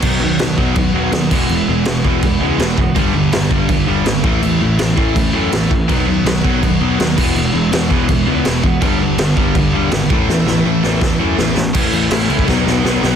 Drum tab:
CC |x---x---x---x-x-|x---x---x---x---|x---x---x---x---|x---x---x---x---|
SD |----o-------o---|----o-------o---|----o-------o---|----o-------o---|
BD |o-----o-o-----o-|------o-o-----o-|o-----o-o-----o-|------o-o-----o-|

CC |x---x---x---x-x-|x---x---x---x---|x---x---x---x---|----------------|
SD |----o-------o---|----o-------o---|----o-------o---|o-o---o-o---o-o-|
BD |o-----o-o-----o-|------o-o-----o-|o-----o-o-----o-|--------o-------|

CC |x-x-x-x---------|
SD |----o---o-o-o-o-|
BD |o------oo-------|